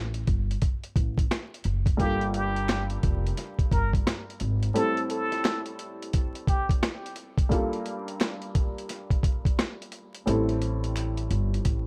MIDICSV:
0, 0, Header, 1, 5, 480
1, 0, Start_track
1, 0, Tempo, 689655
1, 1389, Time_signature, 4, 2, 24, 8
1, 8260, End_track
2, 0, Start_track
2, 0, Title_t, "Muted trumpet"
2, 0, Program_c, 0, 59
2, 1390, Note_on_c, 0, 67, 104
2, 1605, Note_off_c, 0, 67, 0
2, 1638, Note_on_c, 0, 67, 93
2, 2001, Note_off_c, 0, 67, 0
2, 2590, Note_on_c, 0, 70, 88
2, 2725, Note_off_c, 0, 70, 0
2, 3306, Note_on_c, 0, 69, 94
2, 3523, Note_off_c, 0, 69, 0
2, 3555, Note_on_c, 0, 69, 87
2, 3919, Note_off_c, 0, 69, 0
2, 4513, Note_on_c, 0, 67, 84
2, 4646, Note_off_c, 0, 67, 0
2, 8260, End_track
3, 0, Start_track
3, 0, Title_t, "Upright piano"
3, 0, Program_c, 1, 0
3, 1373, Note_on_c, 1, 43, 67
3, 1381, Note_on_c, 1, 55, 63
3, 1388, Note_on_c, 1, 58, 67
3, 1396, Note_on_c, 1, 65, 63
3, 1404, Note_on_c, 1, 69, 73
3, 1525, Control_c, 1, 64, 127
3, 3273, Note_off_c, 1, 43, 0
3, 3277, Note_off_c, 1, 55, 0
3, 3281, Note_off_c, 1, 58, 0
3, 3285, Note_off_c, 1, 65, 0
3, 3289, Note_off_c, 1, 69, 0
3, 3298, Note_on_c, 1, 45, 67
3, 3305, Note_on_c, 1, 55, 64
3, 3314, Note_on_c, 1, 60, 63
3, 3316, Control_c, 1, 64, 0
3, 3321, Note_on_c, 1, 64, 64
3, 3329, Note_on_c, 1, 69, 77
3, 3437, Control_c, 1, 64, 127
3, 5196, Note_off_c, 1, 45, 0
3, 5199, Note_off_c, 1, 55, 0
3, 5204, Note_off_c, 1, 60, 0
3, 5207, Note_off_c, 1, 64, 0
3, 5211, Note_off_c, 1, 69, 0
3, 5215, Note_on_c, 1, 43, 68
3, 5223, Note_on_c, 1, 55, 63
3, 5230, Note_on_c, 1, 58, 69
3, 5238, Note_on_c, 1, 65, 62
3, 5239, Control_c, 1, 64, 0
3, 5245, Note_on_c, 1, 69, 74
3, 5363, Control_c, 1, 64, 127
3, 7114, Note_off_c, 1, 43, 0
3, 7118, Note_off_c, 1, 55, 0
3, 7122, Note_off_c, 1, 58, 0
3, 7126, Note_off_c, 1, 65, 0
3, 7129, Note_off_c, 1, 69, 0
3, 7139, Note_on_c, 1, 45, 69
3, 7146, Note_on_c, 1, 55, 66
3, 7154, Note_on_c, 1, 60, 62
3, 7159, Control_c, 1, 64, 0
3, 7162, Note_on_c, 1, 64, 67
3, 7170, Note_on_c, 1, 69, 77
3, 7294, Control_c, 1, 64, 127
3, 8260, Note_off_c, 1, 45, 0
3, 8260, Note_off_c, 1, 55, 0
3, 8260, Note_off_c, 1, 60, 0
3, 8260, Note_off_c, 1, 64, 0
3, 8260, Note_off_c, 1, 69, 0
3, 8260, End_track
4, 0, Start_track
4, 0, Title_t, "Upright bass"
4, 0, Program_c, 2, 32
4, 0, Note_on_c, 2, 33, 108
4, 161, Note_off_c, 2, 33, 0
4, 192, Note_on_c, 2, 31, 89
4, 379, Note_off_c, 2, 31, 0
4, 666, Note_on_c, 2, 33, 93
4, 856, Note_off_c, 2, 33, 0
4, 1149, Note_on_c, 2, 30, 97
4, 1337, Note_off_c, 2, 30, 0
4, 1389, Note_on_c, 2, 31, 102
4, 2081, Note_off_c, 2, 31, 0
4, 2111, Note_on_c, 2, 29, 89
4, 2299, Note_off_c, 2, 29, 0
4, 2586, Note_on_c, 2, 31, 94
4, 2775, Note_off_c, 2, 31, 0
4, 3068, Note_on_c, 2, 32, 95
4, 3257, Note_off_c, 2, 32, 0
4, 7148, Note_on_c, 2, 33, 107
4, 7841, Note_off_c, 2, 33, 0
4, 7869, Note_on_c, 2, 31, 96
4, 8057, Note_off_c, 2, 31, 0
4, 8111, Note_on_c, 2, 33, 91
4, 8260, Note_off_c, 2, 33, 0
4, 8260, End_track
5, 0, Start_track
5, 0, Title_t, "Drums"
5, 98, Note_on_c, 9, 42, 36
5, 167, Note_off_c, 9, 42, 0
5, 191, Note_on_c, 9, 42, 69
5, 192, Note_on_c, 9, 36, 105
5, 260, Note_off_c, 9, 42, 0
5, 262, Note_off_c, 9, 36, 0
5, 354, Note_on_c, 9, 42, 54
5, 424, Note_off_c, 9, 42, 0
5, 429, Note_on_c, 9, 42, 84
5, 432, Note_on_c, 9, 36, 89
5, 498, Note_off_c, 9, 42, 0
5, 502, Note_off_c, 9, 36, 0
5, 581, Note_on_c, 9, 42, 38
5, 651, Note_off_c, 9, 42, 0
5, 666, Note_on_c, 9, 36, 98
5, 671, Note_on_c, 9, 42, 74
5, 736, Note_off_c, 9, 36, 0
5, 740, Note_off_c, 9, 42, 0
5, 818, Note_on_c, 9, 36, 95
5, 827, Note_on_c, 9, 42, 58
5, 888, Note_off_c, 9, 36, 0
5, 896, Note_off_c, 9, 42, 0
5, 912, Note_on_c, 9, 40, 91
5, 914, Note_on_c, 9, 38, 114
5, 915, Note_on_c, 9, 26, 76
5, 916, Note_on_c, 9, 42, 87
5, 982, Note_off_c, 9, 40, 0
5, 984, Note_off_c, 9, 38, 0
5, 985, Note_off_c, 9, 26, 0
5, 986, Note_off_c, 9, 42, 0
5, 1073, Note_on_c, 9, 42, 37
5, 1141, Note_off_c, 9, 42, 0
5, 1141, Note_on_c, 9, 42, 71
5, 1211, Note_off_c, 9, 42, 0
5, 1294, Note_on_c, 9, 36, 98
5, 1299, Note_on_c, 9, 42, 65
5, 1363, Note_off_c, 9, 36, 0
5, 1369, Note_off_c, 9, 42, 0
5, 1389, Note_on_c, 9, 36, 110
5, 1390, Note_on_c, 9, 42, 98
5, 1458, Note_off_c, 9, 36, 0
5, 1460, Note_off_c, 9, 42, 0
5, 1541, Note_on_c, 9, 42, 37
5, 1610, Note_off_c, 9, 42, 0
5, 1629, Note_on_c, 9, 42, 74
5, 1699, Note_off_c, 9, 42, 0
5, 1784, Note_on_c, 9, 42, 52
5, 1854, Note_off_c, 9, 42, 0
5, 1867, Note_on_c, 9, 26, 72
5, 1872, Note_on_c, 9, 40, 91
5, 1873, Note_on_c, 9, 42, 94
5, 1874, Note_on_c, 9, 38, 109
5, 1937, Note_off_c, 9, 26, 0
5, 1941, Note_off_c, 9, 40, 0
5, 1943, Note_off_c, 9, 38, 0
5, 1943, Note_off_c, 9, 42, 0
5, 2017, Note_on_c, 9, 42, 37
5, 2086, Note_off_c, 9, 42, 0
5, 2109, Note_on_c, 9, 42, 71
5, 2111, Note_on_c, 9, 36, 102
5, 2179, Note_off_c, 9, 42, 0
5, 2181, Note_off_c, 9, 36, 0
5, 2273, Note_on_c, 9, 42, 55
5, 2342, Note_off_c, 9, 42, 0
5, 2348, Note_on_c, 9, 42, 83
5, 2354, Note_on_c, 9, 38, 37
5, 2418, Note_off_c, 9, 42, 0
5, 2424, Note_off_c, 9, 38, 0
5, 2497, Note_on_c, 9, 36, 85
5, 2501, Note_on_c, 9, 42, 36
5, 2566, Note_off_c, 9, 36, 0
5, 2570, Note_off_c, 9, 42, 0
5, 2586, Note_on_c, 9, 36, 99
5, 2592, Note_on_c, 9, 42, 74
5, 2655, Note_off_c, 9, 36, 0
5, 2661, Note_off_c, 9, 42, 0
5, 2738, Note_on_c, 9, 36, 93
5, 2747, Note_on_c, 9, 42, 57
5, 2808, Note_off_c, 9, 36, 0
5, 2817, Note_off_c, 9, 42, 0
5, 2832, Note_on_c, 9, 40, 91
5, 2834, Note_on_c, 9, 26, 73
5, 2834, Note_on_c, 9, 38, 115
5, 2836, Note_on_c, 9, 42, 87
5, 2901, Note_off_c, 9, 40, 0
5, 2903, Note_off_c, 9, 26, 0
5, 2903, Note_off_c, 9, 38, 0
5, 2906, Note_off_c, 9, 42, 0
5, 2993, Note_on_c, 9, 42, 36
5, 3062, Note_off_c, 9, 42, 0
5, 3062, Note_on_c, 9, 42, 71
5, 3131, Note_off_c, 9, 42, 0
5, 3220, Note_on_c, 9, 42, 65
5, 3289, Note_off_c, 9, 42, 0
5, 3310, Note_on_c, 9, 42, 98
5, 3379, Note_off_c, 9, 42, 0
5, 3461, Note_on_c, 9, 42, 37
5, 3530, Note_off_c, 9, 42, 0
5, 3548, Note_on_c, 9, 42, 74
5, 3618, Note_off_c, 9, 42, 0
5, 3703, Note_on_c, 9, 38, 35
5, 3703, Note_on_c, 9, 42, 53
5, 3773, Note_off_c, 9, 38, 0
5, 3773, Note_off_c, 9, 42, 0
5, 3787, Note_on_c, 9, 26, 72
5, 3792, Note_on_c, 9, 40, 92
5, 3793, Note_on_c, 9, 42, 96
5, 3794, Note_on_c, 9, 38, 119
5, 3856, Note_off_c, 9, 26, 0
5, 3862, Note_off_c, 9, 40, 0
5, 3863, Note_off_c, 9, 42, 0
5, 3864, Note_off_c, 9, 38, 0
5, 3937, Note_on_c, 9, 42, 36
5, 4007, Note_off_c, 9, 42, 0
5, 4030, Note_on_c, 9, 42, 71
5, 4100, Note_off_c, 9, 42, 0
5, 4193, Note_on_c, 9, 42, 53
5, 4263, Note_off_c, 9, 42, 0
5, 4269, Note_on_c, 9, 42, 86
5, 4272, Note_on_c, 9, 36, 88
5, 4339, Note_off_c, 9, 42, 0
5, 4341, Note_off_c, 9, 36, 0
5, 4421, Note_on_c, 9, 42, 38
5, 4491, Note_off_c, 9, 42, 0
5, 4506, Note_on_c, 9, 36, 96
5, 4511, Note_on_c, 9, 42, 72
5, 4575, Note_off_c, 9, 36, 0
5, 4581, Note_off_c, 9, 42, 0
5, 4659, Note_on_c, 9, 36, 93
5, 4667, Note_on_c, 9, 42, 58
5, 4728, Note_off_c, 9, 36, 0
5, 4737, Note_off_c, 9, 42, 0
5, 4752, Note_on_c, 9, 40, 91
5, 4753, Note_on_c, 9, 26, 77
5, 4754, Note_on_c, 9, 38, 117
5, 4756, Note_on_c, 9, 42, 84
5, 4821, Note_off_c, 9, 40, 0
5, 4823, Note_off_c, 9, 26, 0
5, 4823, Note_off_c, 9, 38, 0
5, 4825, Note_off_c, 9, 42, 0
5, 4913, Note_on_c, 9, 42, 37
5, 4982, Note_off_c, 9, 42, 0
5, 4982, Note_on_c, 9, 42, 70
5, 5052, Note_off_c, 9, 42, 0
5, 5134, Note_on_c, 9, 36, 100
5, 5139, Note_on_c, 9, 42, 64
5, 5203, Note_off_c, 9, 36, 0
5, 5209, Note_off_c, 9, 42, 0
5, 5229, Note_on_c, 9, 36, 108
5, 5231, Note_on_c, 9, 42, 97
5, 5298, Note_off_c, 9, 36, 0
5, 5301, Note_off_c, 9, 42, 0
5, 5381, Note_on_c, 9, 42, 36
5, 5450, Note_off_c, 9, 42, 0
5, 5468, Note_on_c, 9, 42, 72
5, 5538, Note_off_c, 9, 42, 0
5, 5624, Note_on_c, 9, 42, 54
5, 5694, Note_off_c, 9, 42, 0
5, 5706, Note_on_c, 9, 26, 74
5, 5713, Note_on_c, 9, 40, 92
5, 5714, Note_on_c, 9, 42, 97
5, 5715, Note_on_c, 9, 38, 113
5, 5775, Note_off_c, 9, 26, 0
5, 5782, Note_off_c, 9, 40, 0
5, 5783, Note_off_c, 9, 42, 0
5, 5784, Note_off_c, 9, 38, 0
5, 5858, Note_on_c, 9, 42, 38
5, 5928, Note_off_c, 9, 42, 0
5, 5950, Note_on_c, 9, 42, 72
5, 5952, Note_on_c, 9, 36, 101
5, 6020, Note_off_c, 9, 42, 0
5, 6021, Note_off_c, 9, 36, 0
5, 6114, Note_on_c, 9, 42, 54
5, 6183, Note_off_c, 9, 42, 0
5, 6189, Note_on_c, 9, 42, 89
5, 6195, Note_on_c, 9, 38, 36
5, 6259, Note_off_c, 9, 42, 0
5, 6265, Note_off_c, 9, 38, 0
5, 6337, Note_on_c, 9, 36, 82
5, 6342, Note_on_c, 9, 42, 38
5, 6406, Note_off_c, 9, 36, 0
5, 6411, Note_off_c, 9, 42, 0
5, 6426, Note_on_c, 9, 36, 98
5, 6432, Note_on_c, 9, 42, 75
5, 6496, Note_off_c, 9, 36, 0
5, 6502, Note_off_c, 9, 42, 0
5, 6579, Note_on_c, 9, 36, 92
5, 6588, Note_on_c, 9, 42, 56
5, 6648, Note_off_c, 9, 36, 0
5, 6657, Note_off_c, 9, 42, 0
5, 6673, Note_on_c, 9, 26, 74
5, 6673, Note_on_c, 9, 40, 90
5, 6675, Note_on_c, 9, 38, 112
5, 6677, Note_on_c, 9, 42, 84
5, 6743, Note_off_c, 9, 26, 0
5, 6743, Note_off_c, 9, 40, 0
5, 6745, Note_off_c, 9, 38, 0
5, 6747, Note_off_c, 9, 42, 0
5, 6834, Note_on_c, 9, 42, 36
5, 6903, Note_off_c, 9, 42, 0
5, 6903, Note_on_c, 9, 42, 72
5, 6973, Note_off_c, 9, 42, 0
5, 7061, Note_on_c, 9, 42, 62
5, 7130, Note_off_c, 9, 42, 0
5, 7151, Note_on_c, 9, 42, 100
5, 7221, Note_off_c, 9, 42, 0
5, 7300, Note_on_c, 9, 42, 37
5, 7370, Note_off_c, 9, 42, 0
5, 7389, Note_on_c, 9, 42, 73
5, 7458, Note_off_c, 9, 42, 0
5, 7544, Note_on_c, 9, 42, 51
5, 7613, Note_off_c, 9, 42, 0
5, 7626, Note_on_c, 9, 26, 73
5, 7633, Note_on_c, 9, 42, 94
5, 7696, Note_off_c, 9, 26, 0
5, 7702, Note_off_c, 9, 42, 0
5, 7777, Note_on_c, 9, 42, 38
5, 7847, Note_off_c, 9, 42, 0
5, 7869, Note_on_c, 9, 42, 70
5, 7939, Note_off_c, 9, 42, 0
5, 8032, Note_on_c, 9, 42, 54
5, 8102, Note_off_c, 9, 42, 0
5, 8108, Note_on_c, 9, 42, 88
5, 8112, Note_on_c, 9, 36, 83
5, 8178, Note_off_c, 9, 42, 0
5, 8181, Note_off_c, 9, 36, 0
5, 8260, End_track
0, 0, End_of_file